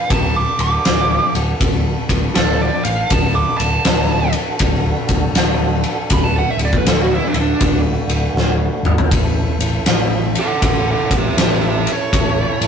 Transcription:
0.00 0.10 F5 medium
0.09 0.41 D1 loud
0.09 0.35 D#4 medium
0.09 0.35 G4 medium
0.09 0.35 A#4 medium
0.09 0.35 A5 medium
0.09 kick loud
0.09 ride medium
0.36 3.11 D4 medium
0.36 0.60 D6 medium
0.40 3.10 F#4 medium
0.40 3.11 A4 medium
0.59 0.76 D1 medium
0.59 1.34 D6 medium
0.59 ride medium
0.85 1.17 D1 medium
0.85 snare loud
0.85 ride medium
1.35 1.51 D1 medium
1.35 ride medium
1.60 1.91 D1 medium
1.60 kick loud
1.60 ride medium
2.09 2.26 D1 medium
2.09 kick medium
2.09 ride medium
2.35 2.67 D1 medium
2.35 2.60 A4 medium
2.35 snare loud
2.35 ride medium
2.61 2.84 D5 medium
2.85 3.02 A1 medium
2.85 3.10 F5 medium
2.85 ride medium
3.10 3.42 D1 loud
3.10 6.09 D4 medium
3.10 6.09 F#4 medium
3.10 3.36 A5 medium
3.10 kick loud
3.10 ride medium
3.35 3.57 D6 medium
3.58 3.76 D1 medium
3.58 4.32 A5 medium
3.58 ride medium
3.85 4.33 D1 medium
3.85 snare loud
3.85 ride loud
4.33 ride medium
4.59 4.91 D1 loud
4.59 kick loud
4.59 ride loud
5.09 5.26 D1 medium
5.09 kick medium
5.09 ride medium
5.34 5.82 D1 medium
5.34 snare loud
5.34 ride medium
5.84 ride medium
6.10 6.42 D1 loud
6.10 9.09 A3 medium
6.10 9.09 D4 medium
6.10 9.10 F#4 medium
6.10 6.24 B5 medium
6.10 kick loud
6.10 ride medium
6.24 6.34 A5 medium
6.38 6.51 F#5 medium
6.51 6.57 E5 medium
6.57 6.75 D1 medium
6.57 ride medium
6.65 6.77 D5 medium
6.73 kick medium
6.78 6.86 B4 medium
6.86 7.17 D1 medium
6.86 7.02 A4 medium
6.86 snare loud
6.86 ride medium
7.02 7.15 F#4 medium
7.15 7.36 E4 medium
7.28 7.33 D4 medium
7.34 7.51 D1 medium
7.34 ride medium
7.41 7.79 D4 medium
7.60 7.92 D1 medium
7.60 kick loud
7.60 ride medium
8.08 8.25 D1 medium
8.08 ride medium
8.34 8.66 D1 medium
8.34 snare medium
8.83 9.01 G#1 medium
8.83 mid tom medium
8.98 floor tom medium
9.11 9.42 A1 medium
9.11 12.11 C#4 medium
9.11 12.11 E4 medium
9.11 12.11 A4 medium
9.11 kick loud
9.11 ride loud
9.59 9.76 A1 medium
9.59 ride medium
9.86 10.35 A1 medium
9.86 snare loud
9.86 ride loud
10.35 10.62 A4 medium
10.35 ride medium
10.41 10.64 F#5 medium
10.62 10.93 A1 medium
10.62 10.86 A4 medium
10.62 10.88 F#5 loud
10.62 kick loud
10.62 ride loud
10.91 11.13 A4 medium
10.91 11.14 F#5 medium
11.10 11.27 A1 medium
11.10 kick medium
11.10 ride medium
11.17 11.39 G4 medium
11.17 11.40 E5 medium
11.37 11.85 A1 medium
11.37 snare loud
11.37 ride loud
11.42 11.63 G4 medium
11.42 11.64 E5 medium
11.68 11.89 G4 medium
11.68 11.90 E5 medium
11.87 ride medium
11.92 12.67 C#5 medium
12.12 12.44 A1 loud
12.12 12.67 E4 medium
12.12 12.67 A4 medium
12.12 12.67 C#5 medium
12.12 kick loud
12.12 ride loud
12.61 12.67 A1 medium
12.61 ride medium

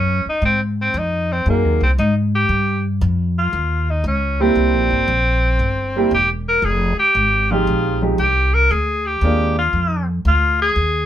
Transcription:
0.00 0.23 F#2 medium
0.00 0.24 C#4 medium
0.26 0.44 D#4 medium
0.26 muted upright bass stroke soft
0.42 0.93 G#2 medium
0.42 0.60 C4 medium
0.81 1.00 C4 medium
0.94 1.45 F2 medium
0.98 1.34 D#4 medium
1.33 1.48 C4 medium
1.46 1.64 F#2 medium
1.46 1.78 F#3 medium
1.46 1.79 A#3 medium
1.46 1.81 A#3 medium
1.46 1.79 C4 soft
1.46 1.79 D#4 medium
1.46 1.79 G#4 medium
1.64 1.80 D#2 medium
1.81 1.97 C2 medium
1.81 1.90 C4 medium
1.98 2.49 G#2 loud
1.98 2.15 D#4 medium
2.35 2.82 G4 medium
2.49 3.00 G2 medium
3.01 3.52 F2 loud
3.39 3.91 F4 medium
3.53 4.03 D#2 medium
3.90 4.06 D#4 medium
4.04 4.55 C#2 medium
4.04 4.43 C#4 medium
4.40 5.05 G3 medium
4.40 5.05 A#3 medium
4.40 5.05 C4 medium
4.40 6.13 C4 loud
4.40 5.06 E4 medium
4.40 5.06 G4 medium
4.55 4.73 C2 medium
4.73 4.90 A#1 medium
4.90 5.07 G1 medium
5.08 5.58 A#1 medium
5.59 6.10 G1 medium
5.96 6.11 G3 medium
5.96 6.11 A#3 medium
5.96 6.11 C4 medium
5.96 6.12 E4 medium
5.96 6.12 G4 medium
6.11 6.62 E1 medium
6.11 6.29 G4 medium
6.48 6.66 A#4 loud
6.62 6.95 F1 medium
6.62 6.99 G#4 loud
6.98 7.53 G4 medium
6.98 muted upright bass stroke soft
7.15 7.65 G#1 medium
7.51 7.99 F3 medium
7.51 7.99 G#3 medium
7.51 7.99 C4 medium
7.51 7.99 D#4 medium
7.51 8.03 F4 medium
7.51 8.00 G4 medium
7.67 8.17 A#1 medium
8.02 8.17 F3 medium
8.02 8.17 G#3 medium
8.02 8.17 C4 medium
8.02 8.17 D#4 medium
8.02 8.18 G4 medium
8.18 8.69 C2 medium
8.18 8.56 G4 medium
8.54 8.73 A#4 loud
8.71 9.21 D2 medium
8.71 9.08 G#4 medium
9.06 9.57 G4 medium
9.21 9.72 D#2 medium
9.21 9.54 G#3 medium
9.21 9.54 A#3 medium
9.21 9.54 C4 medium
9.21 9.54 D4 medium
9.21 9.55 F4 medium
9.58 10.06 F4 medium
9.73 10.24 F2 medium
10.25 10.75 D2 medium
10.25 10.59 F4 medium
10.62 11.06 G#4 loud
10.76 11.06 D#2 medium

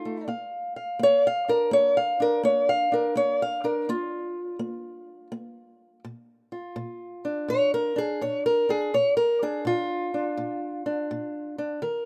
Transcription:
0.00 0.24 F3 medium
0.00 0.29 D#4 medium
0.00 0.29 F4 medium
0.05 0.26 A3 soft
0.28 0.95 A#3 medium
0.28 0.76 F5 soft
0.76 1.26 F5 soft
0.99 1.67 A#3 medium
0.99 1.26 C#5 loud
1.27 1.50 F5 medium
1.48 2.20 D4 soft
1.48 1.73 A#4 medium
1.71 2.39 A#3 medium
1.71 1.97 C#5 medium
1.97 2.21 F5 medium
2.20 2.91 D4 medium
2.20 2.44 A#4 medium
2.43 3.11 A#3 medium
2.43 2.68 C#5 medium
2.69 2.93 F5 medium
2.92 3.20 D4 soft
2.92 3.17 A#4 medium
3.15 3.83 A#3 medium
3.15 3.40 C#5 loud
3.42 3.65 F5 medium
3.64 3.89 D4 soft
3.64 3.88 A#4 medium
3.89 4.56 A#3 medium
3.89 6.05 F4 medium
4.59 5.27 A#3 medium
5.32 5.99 A#3 medium
6.05 6.71 A#2 medium
6.52 7.97 F4 soft
6.76 7.43 A#2 medium
7.25 7.95 D4 soft
7.48 8.15 A#2 medium
7.48 7.73 C#5 loud
7.74 7.97 A#4 medium
7.96 8.68 D4 soft
7.96 8.21 G#4 medium
8.21 8.88 A#2 medium
8.21 8.45 C#5 medium
8.46 8.69 A#4 medium
8.69 8.90 D4 soft
8.69 8.93 G#4 medium
8.94 9.60 A#2 medium
8.94 9.16 C#5 medium
9.17 9.41 A#4 medium
9.42 10.13 D4 soft
9.42 9.66 G#4 medium
9.65 10.32 A#2 medium
9.65 11.82 F4 medium
10.14 10.85 D4 soft
10.37 11.04 A#2 medium
10.86 11.57 D4 soft
11.11 11.77 A#2 medium
11.58 11.79 D4 soft
11.82 12.05 D#3 medium
11.82 12.05 A#4 soft

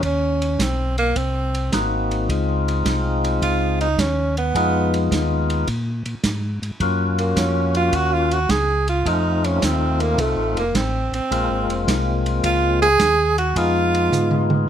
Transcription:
0.02 0.58 D#2 medium
0.02 0.63 C#4 medium
0.02 kick soft
0.02 ride soft
0.42 ride soft
0.59 1.14 B1 medium
0.59 0.98 C4 medium
0.59 kick soft
0.59 snare medium
0.59 hi-hat pedal medium
0.59 ride medium
0.98 1.19 A#3 medium
0.98 ride soft
1.15 1.71 C2 medium
1.15 1.73 C4 medium
1.15 kick soft
1.15 ride medium
1.55 ride soft
1.72 2.27 G#1 medium
1.72 2.29 A#3 medium
1.72 2.29 C4 medium
1.72 2.29 D#4 medium
1.72 2.30 F#4 medium
1.72 kick soft
1.72 snare medium
1.72 hi-hat pedal soft
1.72 ride medium
2.11 ride soft
2.29 2.84 C#2 medium
2.29 3.88 G#3 medium
2.29 3.88 C4 medium
2.29 3.88 D#4 medium
2.29 3.89 F4 medium
2.29 kick soft
2.29 ride medium
2.68 ride soft
2.85 3.40 C2 medium
2.85 kick soft
2.85 snare medium
2.85 hi-hat pedal medium
2.85 ride medium
3.24 ride soft
3.42 3.97 C#2 medium
3.42 3.78 F4 medium
3.42 kick soft
3.42 ride medium
3.81 4.01 D#4 medium
3.81 ride soft
3.98 4.53 D#2 medium
3.98 4.38 C#4 medium
3.98 kick soft
3.98 snare medium
3.98 hi-hat pedal medium
3.98 ride medium
4.37 5.08 B3 medium
4.37 ride soft
4.55 5.09 F2 medium
4.55 5.68 G#3 medium
4.55 5.68 B3 medium
4.55 5.68 D#4 medium
4.55 5.69 F4 medium
4.55 kick soft
4.55 ride medium
4.94 ride soft
5.11 5.66 D#2 medium
5.11 kick soft
5.11 snare medium
5.11 hi-hat pedal medium
5.11 ride medium
5.50 ride soft
5.67 6.03 A#2 medium
5.67 kick soft
5.67 ride medium
6.06 6.15 A#2 soft
6.06 ride soft
6.23 6.59 G#2 medium
6.23 kick soft
6.23 snare medium
6.23 hi-hat pedal medium
6.23 ride medium
6.62 6.71 G#2 soft
6.62 ride soft
6.80 7.35 F#2 medium
6.80 8.39 A#3 medium
6.80 8.39 C#4 medium
6.80 8.40 F4 medium
6.80 8.39 F#4 medium
6.80 kick soft
6.80 ride medium
7.18 7.40 A#3 medium
7.18 ride soft
7.36 7.91 F2 medium
7.36 7.76 C#4 medium
7.36 kick soft
7.36 snare medium
7.36 hi-hat pedal medium
7.36 ride medium
7.75 7.96 F4 medium
7.75 ride soft
7.92 8.47 D#2 medium
7.92 8.15 F#4 medium
7.92 kick soft
7.92 ride medium
8.13 8.34 F4 medium
8.31 8.52 F#4 medium
8.31 ride soft
8.49 9.04 C#2 medium
8.49 8.88 G#4 medium
8.49 kick soft
8.49 snare medium
8.49 hi-hat pedal medium
8.49 ride medium
8.88 9.09 F4 medium
8.88 ride soft
9.05 9.60 F2 medium
9.05 10.64 A3 medium
9.05 10.64 C4 medium
9.05 10.64 D#4 medium
9.05 9.47 D#4 medium
9.05 10.64 F4 medium
9.05 kick soft
9.05 ride medium
9.44 9.66 C#4 medium
9.44 ride soft
9.62 10.16 D#2 medium
9.62 10.03 C4 medium
9.62 kick soft
9.62 snare medium
9.62 hi-hat pedal medium
9.62 ride medium
10.00 10.21 A#3 medium
10.00 ride soft
10.18 10.36 C2 medium
10.18 10.57 A3 medium
10.18 kick soft
10.18 ride medium
10.36 10.55 A1 soft
10.55 10.73 F1 medium
10.55 10.78 A#3 medium
10.55 ride soft
10.75 11.10 A1 medium
10.75 11.14 C4 medium
10.75 kick soft
10.75 snare medium
10.75 hi-hat pedal medium
10.75 ride medium
11.12 11.21 A1 soft
11.12 11.84 C4 medium
11.12 ride soft
11.31 11.49 A#1 medium
11.31 12.89 G#3 medium
11.31 12.89 A#3 medium
11.31 12.89 C4 medium
11.31 12.89 F4 medium
11.31 kick soft
11.31 ride medium
11.49 11.68 G#1 medium
11.68 11.85 F1 medium
11.68 ride soft
11.87 12.42 C2 medium
11.87 kick soft
11.87 snare medium
11.87 hi-hat pedal medium
11.87 ride medium
12.26 ride soft
12.44 12.98 C#2 medium
12.44 12.80 F4 medium
12.44 kick soft
12.44 ride medium
12.82 13.34 G#4 loud
12.82 ride soft
12.99 13.54 D#2 medium
12.99 kick soft
12.99 snare medium
12.99 hi-hat pedal medium
12.99 ride medium
13.38 13.59 F#4 medium
13.38 ride soft
13.56 14.10 F2 medium
13.56 14.68 G#3 medium
13.56 14.69 B3 medium
13.56 14.69 D#4 medium
13.56 14.51 F4 medium
13.56 14.69 F4 medium
13.56 kick soft
13.56 ride medium
13.94 ride soft
14.12 14.66 G#2 medium
14.12 hi-hat pedal medium
14.12 mid tom soft
14.31 mid tom medium
14.50 mid tom medium

